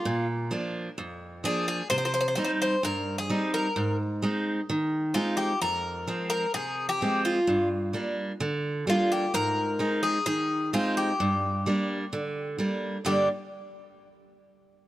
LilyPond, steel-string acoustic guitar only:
\new Staff \with { instrumentName = "Steel-string acoustic guitar" } { \clef bass \time 4/4 \key g \phrygian \tempo 4 = 129 bes,4 <f bes d'>4 f,4 <f bes d'>4 | c4 <g c' ees'>4 g,4 <g c' ees'>4 | aes,4 <aes c' ees'>4 ees4 <aes c' ees'>4 | f,4 <f aes c'>4 c4 <f aes c'>4 |
g,4 <g bes d'>4 d4 <g bes d'>4 | aes,4 <aes c' ees'>4 ees4 <aes c' ees'>4 | g,4 <g bes d'>4 d4 <g bes d'>4 | <g, d g bes d'>8 r2. r8 | }